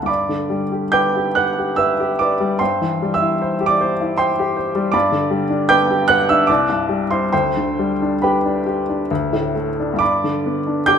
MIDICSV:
0, 0, Header, 1, 2, 480
1, 0, Start_track
1, 0, Key_signature, 1, "major"
1, 0, Tempo, 853485
1, 44, Time_signature, 3, 2, 24, 8
1, 1002, Tempo, 813008
1, 1962, Tempo, 765306
1, 3402, Tempo, 807537
1, 4362, Tempo, 887574
1, 6345, End_track
2, 0, Start_track
2, 0, Title_t, "Upright piano"
2, 0, Program_c, 0, 0
2, 0, Control_c, 0, 64, 127
2, 0, Note_on_c, 0, 38, 45
2, 0, Note_on_c, 0, 78, 35
2, 0, Note_on_c, 0, 81, 34
2, 15, Note_on_c, 0, 43, 44
2, 35, Note_on_c, 0, 86, 61
2, 42, Note_on_c, 0, 74, 47
2, 42, Note_on_c, 0, 83, 45
2, 56, Control_c, 0, 64, 0
2, 57, Note_off_c, 0, 81, 0
2, 59, Note_off_c, 0, 78, 0
2, 60, Note_off_c, 0, 38, 0
2, 160, Control_c, 0, 64, 127
2, 164, Note_on_c, 0, 50, 32
2, 280, Note_on_c, 0, 55, 39
2, 356, Note_off_c, 0, 50, 0
2, 405, Note_on_c, 0, 67, 36
2, 473, Note_off_c, 0, 55, 0
2, 500, Note_off_c, 0, 83, 0
2, 501, Note_off_c, 0, 74, 0
2, 514, Note_off_c, 0, 86, 0
2, 516, Note_on_c, 0, 91, 82
2, 523, Note_on_c, 0, 86, 57
2, 524, Note_on_c, 0, 79, 57
2, 526, Note_on_c, 0, 71, 45
2, 596, Note_off_c, 0, 67, 0
2, 654, Note_on_c, 0, 67, 40
2, 717, Note_off_c, 0, 71, 0
2, 747, Note_off_c, 0, 79, 0
2, 747, Note_off_c, 0, 86, 0
2, 760, Note_off_c, 0, 91, 0
2, 760, Note_on_c, 0, 90, 67
2, 765, Note_on_c, 0, 78, 55
2, 768, Note_on_c, 0, 71, 43
2, 841, Note_off_c, 0, 67, 0
2, 894, Note_on_c, 0, 67, 38
2, 957, Note_off_c, 0, 71, 0
2, 985, Note_off_c, 0, 78, 0
2, 992, Note_on_c, 0, 88, 75
2, 1000, Note_off_c, 0, 90, 0
2, 1002, Note_on_c, 0, 71, 49
2, 1004, Note_on_c, 0, 76, 53
2, 1080, Note_off_c, 0, 67, 0
2, 1132, Note_on_c, 0, 67, 46
2, 1197, Note_off_c, 0, 71, 0
2, 1229, Note_off_c, 0, 76, 0
2, 1240, Note_off_c, 0, 88, 0
2, 1243, Note_on_c, 0, 86, 67
2, 1254, Note_on_c, 0, 74, 47
2, 1257, Note_on_c, 0, 71, 42
2, 1321, Note_off_c, 0, 67, 0
2, 1369, Note_on_c, 0, 55, 44
2, 1443, Note_off_c, 0, 71, 0
2, 1447, Note_off_c, 0, 43, 0
2, 1473, Note_off_c, 0, 74, 0
2, 1479, Note_on_c, 0, 84, 70
2, 1485, Note_off_c, 0, 86, 0
2, 1487, Note_off_c, 0, 55, 0
2, 1489, Note_on_c, 0, 43, 50
2, 1489, Note_on_c, 0, 79, 54
2, 1491, Note_on_c, 0, 72, 45
2, 1495, Control_c, 0, 64, 0
2, 1606, Control_c, 0, 64, 127
2, 1611, Note_on_c, 0, 52, 41
2, 1734, Note_on_c, 0, 55, 40
2, 1785, Note_off_c, 0, 79, 0
2, 1786, Note_off_c, 0, 72, 0
2, 1800, Note_off_c, 0, 52, 0
2, 1802, Note_off_c, 0, 84, 0
2, 1804, Note_on_c, 0, 88, 67
2, 1810, Note_on_c, 0, 76, 53
2, 1847, Note_on_c, 0, 64, 43
2, 1920, Note_off_c, 0, 55, 0
2, 1968, Note_on_c, 0, 72, 51
2, 2038, Note_off_c, 0, 64, 0
2, 2087, Note_on_c, 0, 67, 49
2, 2107, Note_off_c, 0, 76, 0
2, 2122, Note_on_c, 0, 86, 77
2, 2127, Note_off_c, 0, 88, 0
2, 2130, Note_on_c, 0, 74, 58
2, 2163, Note_off_c, 0, 72, 0
2, 2213, Note_on_c, 0, 72, 52
2, 2283, Note_off_c, 0, 67, 0
2, 2341, Note_on_c, 0, 64, 44
2, 2407, Note_off_c, 0, 72, 0
2, 2432, Note_off_c, 0, 74, 0
2, 2443, Note_on_c, 0, 84, 77
2, 2450, Note_off_c, 0, 86, 0
2, 2450, Note_on_c, 0, 79, 58
2, 2453, Note_on_c, 0, 72, 55
2, 2530, Note_off_c, 0, 64, 0
2, 2580, Note_on_c, 0, 67, 54
2, 2680, Note_off_c, 0, 72, 0
2, 2689, Note_on_c, 0, 72, 50
2, 2766, Note_off_c, 0, 67, 0
2, 2805, Note_on_c, 0, 55, 50
2, 2877, Note_off_c, 0, 72, 0
2, 2898, Note_off_c, 0, 79, 0
2, 2902, Note_off_c, 0, 43, 0
2, 2908, Note_on_c, 0, 86, 79
2, 2918, Note_on_c, 0, 74, 64
2, 2920, Note_off_c, 0, 84, 0
2, 2920, Note_on_c, 0, 43, 56
2, 2921, Note_on_c, 0, 83, 57
2, 2923, Note_off_c, 0, 55, 0
2, 2934, Control_c, 0, 64, 0
2, 3028, Control_c, 0, 64, 127
2, 3036, Note_on_c, 0, 50, 49
2, 3153, Note_on_c, 0, 55, 47
2, 3229, Note_off_c, 0, 50, 0
2, 3274, Note_on_c, 0, 62, 48
2, 3350, Note_off_c, 0, 55, 0
2, 3374, Note_off_c, 0, 74, 0
2, 3376, Note_off_c, 0, 83, 0
2, 3386, Note_off_c, 0, 86, 0
2, 3392, Note_on_c, 0, 91, 96
2, 3395, Note_on_c, 0, 79, 81
2, 3395, Note_on_c, 0, 86, 73
2, 3400, Note_on_c, 0, 71, 56
2, 3470, Note_off_c, 0, 62, 0
2, 3523, Note_on_c, 0, 67, 52
2, 3588, Note_off_c, 0, 71, 0
2, 3616, Note_off_c, 0, 79, 0
2, 3616, Note_off_c, 0, 86, 0
2, 3624, Note_on_c, 0, 90, 94
2, 3630, Note_on_c, 0, 78, 70
2, 3631, Note_off_c, 0, 91, 0
2, 3636, Note_on_c, 0, 71, 54
2, 3708, Note_off_c, 0, 67, 0
2, 3742, Note_off_c, 0, 78, 0
2, 3747, Note_off_c, 0, 90, 0
2, 3751, Note_on_c, 0, 88, 79
2, 3758, Note_on_c, 0, 62, 50
2, 3759, Note_on_c, 0, 76, 54
2, 3822, Note_off_c, 0, 71, 0
2, 3844, Note_off_c, 0, 43, 0
2, 3858, Note_on_c, 0, 86, 78
2, 3864, Note_off_c, 0, 76, 0
2, 3868, Note_off_c, 0, 88, 0
2, 3869, Note_on_c, 0, 74, 56
2, 3872, Note_off_c, 0, 62, 0
2, 3872, Note_on_c, 0, 36, 59
2, 3878, Control_c, 0, 64, 0
2, 3965, Control_c, 0, 64, 127
2, 3990, Note_on_c, 0, 43, 49
2, 4108, Note_on_c, 0, 55, 44
2, 4184, Note_off_c, 0, 43, 0
2, 4210, Note_off_c, 0, 74, 0
2, 4228, Note_off_c, 0, 86, 0
2, 4235, Note_on_c, 0, 84, 68
2, 4237, Note_on_c, 0, 64, 44
2, 4242, Note_on_c, 0, 72, 51
2, 4310, Note_off_c, 0, 55, 0
2, 4350, Note_off_c, 0, 36, 0
2, 4357, Note_off_c, 0, 84, 0
2, 4358, Note_off_c, 0, 72, 0
2, 4364, Note_off_c, 0, 64, 0
2, 4366, Note_on_c, 0, 84, 70
2, 4367, Note_on_c, 0, 79, 59
2, 4369, Note_on_c, 0, 72, 59
2, 4372, Note_on_c, 0, 38, 52
2, 4373, Control_c, 0, 64, 0
2, 4455, Control_c, 0, 64, 127
2, 4498, Note_on_c, 0, 50, 40
2, 4617, Note_on_c, 0, 55, 42
2, 4683, Note_off_c, 0, 50, 0
2, 4742, Note_on_c, 0, 62, 43
2, 4804, Note_off_c, 0, 55, 0
2, 4826, Note_off_c, 0, 72, 0
2, 4826, Note_off_c, 0, 79, 0
2, 4846, Note_off_c, 0, 84, 0
2, 4849, Note_on_c, 0, 83, 55
2, 4856, Note_on_c, 0, 79, 49
2, 4857, Note_on_c, 0, 71, 46
2, 4859, Note_on_c, 0, 67, 51
2, 4926, Note_off_c, 0, 62, 0
2, 4976, Note_on_c, 0, 62, 43
2, 5044, Note_off_c, 0, 67, 0
2, 5089, Note_on_c, 0, 67, 49
2, 5162, Note_off_c, 0, 62, 0
2, 5213, Note_on_c, 0, 62, 38
2, 5277, Note_off_c, 0, 67, 0
2, 5305, Note_off_c, 0, 38, 0
2, 5327, Note_off_c, 0, 62, 0
2, 5331, Note_on_c, 0, 38, 55
2, 5334, Control_c, 0, 64, 0
2, 5440, Control_c, 0, 64, 127
2, 5449, Note_on_c, 0, 45, 41
2, 5549, Note_off_c, 0, 71, 0
2, 5549, Note_off_c, 0, 79, 0
2, 5567, Note_off_c, 0, 83, 0
2, 5568, Note_on_c, 0, 57, 36
2, 5642, Note_off_c, 0, 45, 0
2, 5702, Note_on_c, 0, 62, 43
2, 5763, Note_off_c, 0, 57, 0
2, 5778, Note_on_c, 0, 43, 49
2, 5801, Note_off_c, 0, 38, 0
2, 5805, Note_on_c, 0, 86, 76
2, 5813, Note_on_c, 0, 83, 56
2, 5816, Note_on_c, 0, 74, 51
2, 5817, Note_off_c, 0, 62, 0
2, 5823, Control_c, 0, 64, 0
2, 5936, Control_c, 0, 64, 127
2, 5941, Note_on_c, 0, 50, 39
2, 6060, Note_on_c, 0, 59, 38
2, 6128, Note_off_c, 0, 50, 0
2, 6174, Note_on_c, 0, 62, 41
2, 6244, Note_off_c, 0, 59, 0
2, 6265, Note_off_c, 0, 83, 0
2, 6266, Note_off_c, 0, 74, 0
2, 6278, Note_off_c, 0, 86, 0
2, 6278, Note_on_c, 0, 91, 91
2, 6287, Note_on_c, 0, 79, 65
2, 6287, Note_on_c, 0, 86, 69
2, 6288, Note_on_c, 0, 67, 53
2, 6345, Note_off_c, 0, 43, 0
2, 6345, Note_off_c, 0, 62, 0
2, 6345, Note_off_c, 0, 67, 0
2, 6345, Note_off_c, 0, 79, 0
2, 6345, Note_off_c, 0, 86, 0
2, 6345, Note_off_c, 0, 91, 0
2, 6345, End_track
0, 0, End_of_file